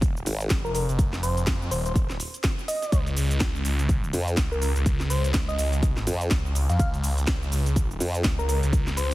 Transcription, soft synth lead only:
0.65 0.71 A#4 medium
0.75 0.84 A#4 medium
1.23 1.39 C5 loud
1.71 1.80 C5 medium
1.86 1.92 C5 medium
2.68 2.98 D#5 loud
4.52 4.58 A#4 medium
4.62 4.71 A#4 medium
5.10 5.26 C5 loud
5.49 5.55 D#5 medium
5.58 5.67 D#5 medium
6.69 6.76 F5 medium
6.80 6.89 F5 medium
8.39 8.45 A#4 medium
8.49 8.58 A#4 medium
8.97 9.13 C5 loud

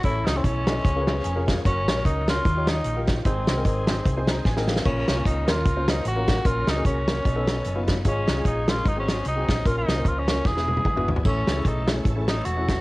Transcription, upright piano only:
0.03 0.63 A2 medium
0.03 0.29 C#4 medium
0.03 0.29 E4 medium
0.03 0.29 A4 medium
0.03 0.29 C#5 medium
0.35 0.58 C#4 medium
0.35 0.58 E4 medium
0.35 0.58 A4 medium
0.35 0.58 C#5 medium
0.67 0.84 C#4 medium
0.67 0.85 E4 medium
0.67 0.85 A4 medium
0.67 0.85 D#5 medium
0.85 1.44 C#3 medium
0.96 1.24 C#4 medium
0.96 1.25 F4 medium
0.96 1.25 G#4 medium
0.96 1.02 A#4 medium
1.01 1.27 B4 medium
1.24 1.46 G#5 medium
1.36 1.58 C#4 medium
1.36 1.58 F4 medium
1.36 1.58 G#4 medium
1.36 1.58 A#4 medium
1.47 1.64 F5 medium
1.65 1.89 C#4 medium
1.65 1.90 F#4 medium
1.65 1.90 A#4 medium
1.65 1.90 C#5 medium
1.96 2.19 C#4 medium
1.96 2.19 F#4 medium
1.96 2.19 A#4 medium
1.96 2.19 C#5 medium
2.28 2.45 C#4 medium
2.28 2.45 F#4 medium
2.28 2.45 A#4 medium
2.28 2.45 C#5 medium
2.45 3.04 D#3 medium
2.57 2.85 D#4 medium
2.57 2.85 F4 medium
2.57 2.85 G4 medium
2.57 2.85 C#5 medium
2.97 3.19 D#4 medium
2.97 3.19 F4 medium
2.97 3.19 G4 medium
2.97 3.19 A#4 medium
3.26 3.84 G#2 medium
3.26 3.50 C4 medium
3.26 3.50 D#4 medium
3.26 3.50 G#4 medium
3.26 3.50 C5 medium
3.57 3.79 C4 medium
3.57 3.79 D#4 medium
3.57 3.79 G#4 medium
3.57 3.79 A#4 medium
3.88 4.08 C4 medium
3.88 4.08 D#4 medium
3.88 4.08 G#4 medium
3.88 4.08 C5 medium
4.17 4.45 C4 medium
4.17 4.45 D#4 medium
4.17 4.45 G#4 medium
4.17 4.45 C5 medium
4.28 4.44 A#5 medium
4.46 4.67 G#5 medium
4.57 4.79 C4 medium
4.57 4.79 D#4 medium
4.57 4.79 G#4 medium
4.57 4.79 A#4 medium
4.68 4.84 F5 medium
4.85 5.44 A#2 medium
4.85 5.10 A#3 medium
4.85 5.10 C#4 medium
4.85 5.10 F4 medium
4.85 5.10 A#4 medium
5.16 5.39 A#3 medium
5.16 5.39 C#4 medium
5.16 5.39 F4 medium
5.16 5.39 A#4 medium
5.47 5.67 A#3 medium
5.47 5.67 C#4 medium
5.47 5.68 F4 medium
5.47 5.68 A#4 medium
5.76 6.05 A#3 medium
5.76 6.05 C#4 medium
5.76 6.05 F4 medium
5.76 6.05 C5 medium
6.16 6.38 A#3 medium
6.16 6.38 C#4 medium
6.16 6.39 F4 medium
6.16 6.38 A#4 medium
6.45 7.04 A#2 medium
6.45 6.70 A#3 medium
6.45 6.70 C#4 medium
6.45 6.70 F#4 medium
6.45 6.70 A#4 medium
6.76 6.99 A#3 medium
6.76 6.99 C#4 medium
6.76 6.99 F#4 medium
6.76 6.99 G#4 medium
7.08 7.25 A#3 medium
7.08 7.25 C#4 medium
7.08 7.25 F#4 medium
7.08 7.25 C#5 medium
7.25 7.84 B2 medium
7.36 7.65 B3 medium
7.36 7.65 C#4 medium
7.36 7.65 D#4 medium
7.36 7.65 A4 medium
7.76 7.98 B3 medium
7.76 7.98 C#4 medium
7.76 7.98 D#4 medium
7.76 7.98 F4 medium
8.06 8.64 G#2 medium
8.06 8.30 G#3 medium
8.06 8.30 C#4 medium
8.06 8.30 F4 medium
8.06 8.30 G#4 medium
8.37 8.59 G#3 medium
8.37 8.59 C#4 medium
8.37 8.59 F4 medium
8.37 8.60 G#4 medium
8.67 8.85 G#3 medium
8.67 8.85 C#4 medium
8.67 8.85 F4 medium
8.67 8.85 A#4 medium
8.85 9.44 G#2 medium
8.96 9.25 C4 medium
8.96 9.25 D#4 medium
8.96 9.25 F#4 medium
8.96 9.25 G#4 medium
9.36 9.58 C4 medium
9.36 9.58 D#4 medium
9.36 9.58 F#4 medium
9.36 9.58 G#4 medium
9.65 10.24 A#2 medium
9.65 9.90 A#3 medium
9.65 9.90 C#4 medium
9.65 9.90 F4 medium
9.65 9.90 A#4 medium
9.96 10.19 A#3 medium
9.96 10.19 C#4 medium
9.96 10.19 F4 medium
9.96 10.19 C5 medium
10.28 10.45 A#3 medium
10.28 10.45 C#4 medium
10.28 10.45 F4 medium
10.28 10.46 C#5 medium
10.45 11.04 E3 medium
10.56 10.85 B3 medium
10.56 10.85 D4 medium
10.56 10.85 E4 medium
10.56 10.85 G#4 medium
10.96 11.18 B3 medium
10.96 11.18 D4 medium
10.96 11.18 E4 medium
10.96 11.19 F#4 medium
11.25 11.84 A2 medium
11.25 11.50 A3 medium
11.25 11.50 C#4 medium
11.25 11.50 E4 medium
11.25 11.50 A4 medium
11.56 11.79 A3 medium
11.56 11.79 C#4 medium
11.56 11.79 E4 medium
11.56 11.79 G#4 medium
11.87 12.08 A3 medium
11.87 12.08 C#4 medium
11.87 12.08 E4 medium
11.87 12.08 G#4 medium
12.16 12.45 A3 medium
12.16 12.45 C#4 medium
12.16 12.45 E4 medium
12.16 12.22 G#4 medium
12.21 12.47 A4 medium
12.57 12.79 A3 medium
12.57 12.79 C#4 medium
12.57 12.79 E4 medium
12.57 12.79 F#4 medium

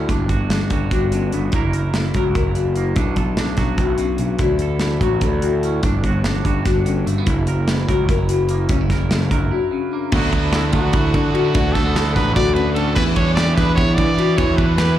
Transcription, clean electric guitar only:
0.00 0.12 F#3 medium
0.00 0.30 F#4 medium
0.09 1.50 G2 medium
0.09 0.50 D4 medium
0.30 0.72 F#4 medium
0.52 0.92 D4 medium
0.72 1.51 G3 medium
0.72 1.56 F#4 medium
0.94 1.51 D4 medium
1.13 1.51 D3 medium
1.33 1.51 B3 medium
1.53 2.97 F#2 medium
1.53 2.15 F#3 medium
1.53 2.76 A#3 medium
1.53 1.94 E4 medium
1.53 1.73 A#4 medium
1.74 2.15 A#4 soft
1.95 2.35 E4 medium
2.16 3.57 F#3 medium
2.16 2.95 A#4 medium
2.37 2.95 E4 medium
2.57 2.95 C#3 medium
2.77 2.94 A#3 medium
2.96 3.98 B2 medium
2.96 3.38 D4 medium
3.18 3.58 A4 medium
3.38 4.41 D4 medium
3.57 4.44 F#3 medium
3.57 4.62 F#4 medium
3.79 3.99 A2 medium
3.99 4.19 B2 medium
4.20 4.40 C#3 medium
4.40 5.81 D3 medium
4.40 4.81 E4 medium
4.62 5.02 A4 medium
4.82 5.22 E4 medium
5.02 5.87 F#3 medium
5.02 6.06 F#4 medium
5.23 5.82 E4 medium
5.43 5.81 A2 medium
5.65 5.82 C#4 medium
5.84 7.25 G2 medium
5.84 6.25 D4 medium
6.06 6.46 F#4 medium
6.26 6.66 D4 medium
6.46 7.25 G3 medium
6.46 7.48 F#4 medium
6.67 7.25 D4 medium
6.86 7.25 D3 medium
7.06 7.18 A3 medium
7.18 7.28 B3 medium
7.27 8.69 F#2 medium
7.27 7.69 E4 soft
7.48 7.89 A#4 medium
7.70 8.10 E4 medium
7.89 8.84 F#3 medium
7.89 8.68 A#4 medium
8.10 8.70 E4 medium
8.30 8.68 C#3 medium
8.50 8.68 A#3 medium
8.70 10.13 F#2 medium
8.70 8.81 C#4 medium
8.81 9.10 E4 soft
8.91 9.30 A#4 medium
9.11 9.51 E4 medium
9.31 10.10 F#3 medium
9.31 10.11 A#4 medium
9.52 10.11 E4 medium
9.72 10.11 C#3 medium
9.93 10.11 A#3 medium
10.13 11.53 D3 medium
10.13 10.74 F#3 medium
10.13 10.34 B3 medium
10.13 11.34 E4 medium
10.13 12.98 F#4 medium
10.34 10.54 B3 medium
10.54 10.75 B3 medium
10.74 11.53 F#3 medium
10.74 11.74 B3 medium
11.34 11.53 A2 medium
11.34 11.45 C#4 soft
11.45 11.55 E4 medium
11.55 12.94 D3 medium
11.75 11.85 A3 medium
11.85 12.15 B3 medium
11.96 12.76 E4 medium
12.15 12.94 F#3 medium
12.15 13.58 B3 medium
12.76 12.94 A2 medium
12.76 12.87 C#4 medium
12.87 12.97 E4 medium
12.98 14.39 E3 medium
13.19 13.59 D4 medium
13.39 14.19 G4 medium
13.58 14.99 B3 medium
13.58 14.42 D4 medium
14.19 14.39 B2 medium
14.19 14.37 G4 medium
14.39 14.99 E3 medium
14.59 14.99 D4 medium
14.80 14.99 G4 medium

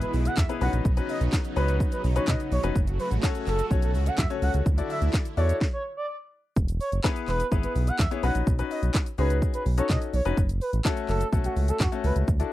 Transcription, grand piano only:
0.00 0.35 B3 medium
0.00 0.35 E4 medium
0.00 0.35 G#4 medium
0.00 0.35 B4 medium
0.49 0.61 B3 medium
0.49 0.61 E4 medium
0.49 0.61 G#4 medium
0.49 0.60 B4 medium
0.61 0.90 C#4 medium
0.61 0.90 D#4 medium
0.61 0.90 F#4 medium
0.61 0.90 B4 medium
0.97 1.42 C#4 medium
0.97 1.42 D#4 medium
0.97 1.42 F#4 medium
0.97 1.42 B4 medium
1.56 2.01 C#4 medium
1.56 2.01 D#4 medium
1.56 2.02 F#4 medium
1.56 2.02 B4 medium
2.16 2.52 C#4 medium
2.16 2.52 D#4 medium
2.16 2.52 F#4 medium
2.16 2.52 B4 medium
2.63 2.75 C#4 medium
2.63 2.75 D#4 medium
2.63 2.75 F#4 medium
2.63 2.76 B4 medium
3.23 3.59 C#4 loud
3.23 3.59 F#4 medium
3.23 3.59 A4 medium
3.23 3.59 C#5 loud
3.70 4.16 C#4 medium
3.70 4.16 F#4 medium
3.70 4.16 A4 medium
3.70 4.16 C#5 loud
4.30 4.66 C#4 medium
4.30 4.66 F#4 medium
4.30 4.66 A4 medium
4.30 4.66 C#5 loud
4.78 5.23 E4 medium
4.78 5.23 F#4 medium
4.78 5.23 A4 medium
4.78 5.23 D5 medium
5.37 5.61 E4 medium
5.37 5.61 F#4 medium
5.37 5.61 A4 medium
5.37 5.61 D5 medium
7.04 7.40 B3 loud
7.04 7.40 E4 medium
7.04 7.40 G#4 medium
7.04 7.40 B4 loud
7.52 7.97 B3 medium
7.52 7.97 E4 medium
7.52 7.97 G#4 medium
7.52 7.97 B4 medium
8.11 8.23 B3 medium
8.11 8.23 E4 medium
8.11 8.23 G#4 medium
8.11 8.23 C#5 medium
8.23 8.52 C#4 medium
8.23 8.52 D#4 medium
8.23 8.52 F#4 medium
8.23 8.52 B4 medium
8.59 9.04 C#4 medium
8.59 9.04 D#4 medium
8.59 9.04 F#4 medium
8.59 9.04 B4 medium
9.18 9.63 C#4 medium
9.18 9.63 D#4 medium
9.18 9.63 F#4 medium
9.18 9.64 G#4 medium
9.78 10.14 C#4 medium
9.78 10.14 D#4 medium
9.78 10.14 F#4 medium
9.78 10.14 A4 medium
10.25 10.37 C#4 medium
10.25 10.37 D#4 medium
10.25 10.37 F#4 medium
10.25 10.38 B4 medium
10.85 11.21 A3 loud
10.85 11.21 C#4 loud
10.85 11.21 F#4 medium
10.85 11.21 A4 loud
11.32 11.78 A3 medium
11.32 11.78 C#4 medium
11.32 11.78 F#4 medium
11.32 11.78 A4 medium
11.92 12.28 A3 medium
11.92 12.28 C#4 medium
11.92 12.28 F#4 medium
11.92 12.28 A4 medium
12.40 12.53 D4 medium
12.40 12.53 E4 medium
12.40 12.53 F#4 medium
12.40 12.53 A4 medium

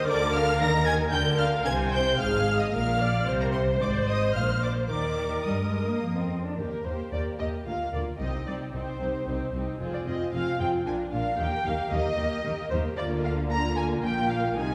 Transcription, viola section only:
0.07 1.11 A#4 medium
1.13 1.66 A#4 medium
1.67 2.20 C5 medium
2.20 2.73 G#4 medium
2.74 3.00 A#4 medium
3.00 3.27 D5 medium
3.27 4.90 C5 medium
4.90 6.27 A#4 medium
6.57 6.84 A#3 soft
6.57 6.84 G4 soft
6.85 7.11 A#3 soft
6.85 7.11 G4 soft
7.12 7.38 A#3 soft
7.12 7.38 G4 soft
7.39 7.65 A#3 soft
7.39 7.66 G4 soft
7.66 7.92 A#3 soft
7.66 7.92 F4 soft
7.93 8.19 A#3 soft
7.93 8.19 F4 soft
8.20 8.45 C4 soft
8.20 8.46 D#4 soft
8.47 8.72 C4 soft
8.47 8.72 D#4 soft
8.73 8.99 C4 soft
8.73 8.99 D#4 soft
9.00 9.26 C4 soft
9.00 9.25 D#4 soft
9.27 9.53 C4 soft
9.27 9.52 D#4 soft
9.54 9.79 C4 soft
9.54 9.80 D#4 soft
9.80 10.06 C4 soft
9.80 10.06 F4 soft
10.07 10.32 C4 soft
10.07 10.32 F4 soft
10.33 10.58 C4 soft
10.33 10.58 F4 soft
10.59 10.85 C4 soft
10.59 10.84 F4 soft
10.85 11.10 D4 soft
10.85 11.10 F4 soft
11.11 11.38 D4 soft
11.11 11.38 F4 soft
11.37 11.63 A#3 soft
11.37 11.63 G4 soft
11.64 11.89 A#3 soft
11.64 11.89 G4 soft
11.90 12.16 A#3 medium
11.90 12.15 G4 soft
12.17 12.42 A#3 soft
12.17 12.42 G4 soft
12.43 12.68 A#3 soft
12.43 12.69 G4 soft
12.70 12.95 A#3 medium
12.70 12.96 G4 soft
12.96 13.46 A#3 medium
12.96 13.46 F4 medium
13.50 14.55 A#3 medium
13.50 14.55 F4 medium
14.57 14.74 D#3 medium
14.57 14.74 D#4 medium

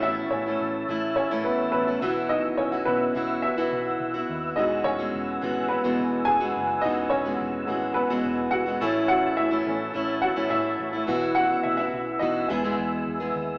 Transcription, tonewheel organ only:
0.00 2.00 C#5 medium
0.00 4.53 E5 medium
0.00 2.00 A5 medium
0.00 8.77 E6 medium
2.02 8.77 B4 medium
2.02 4.54 F#5 medium
4.58 8.78 F#5 medium
4.58 8.78 G#5 medium
8.81 11.06 C#5 medium
8.81 13.58 E5 medium
8.81 11.06 A5 medium
8.81 13.58 E6 medium
11.08 13.58 B4 medium
11.08 12.48 F#5 medium
12.50 13.58 G#5 medium

